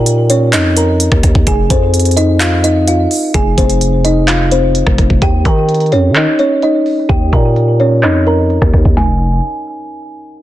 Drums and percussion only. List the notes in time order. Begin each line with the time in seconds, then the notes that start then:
0.06 closed hi-hat
0.30 closed hi-hat
0.53 clap, closed hi-hat
0.77 closed hi-hat
1.00 closed hi-hat
1.12 kick, cross-stick
1.23 kick, cross-stick, closed hi-hat
1.35 kick
1.47 kick, closed hi-hat
1.70 kick, closed hi-hat
1.94 closed hi-hat
2.00 closed hi-hat
2.05 closed hi-hat
2.11 closed hi-hat
2.17 closed hi-hat
2.40 clap, closed hi-hat
2.64 closed hi-hat
2.88 closed hi-hat
3.11 open hi-hat
3.34 kick, closed hi-hat
3.58 kick, closed hi-hat
3.70 closed hi-hat
3.81 closed hi-hat
4.05 closed hi-hat
4.28 clap, closed hi-hat
4.51 closed hi-hat
4.75 closed hi-hat
4.87 kick, cross-stick
4.98 kick, cross-stick, closed hi-hat
5.10 kick
5.22 kick, closed hi-hat
5.45 kick, closed hi-hat
5.69 closed hi-hat
5.74 closed hi-hat
5.80 closed hi-hat
5.86 closed hi-hat
5.92 closed hi-hat
6.16 clap, closed hi-hat
6.39 closed hi-hat
6.62 closed hi-hat
6.86 open hi-hat
7.09 kick, closed hi-hat
7.33 kick, closed hi-hat
7.56 closed hi-hat
7.80 closed hi-hat
8.03 clap, closed hi-hat
8.27 closed hi-hat
8.50 closed hi-hat
8.62 kick, cross-stick
8.74 kick, cross-stick, closed hi-hat
8.85 kick
8.97 snare, floor tom, open hi-hat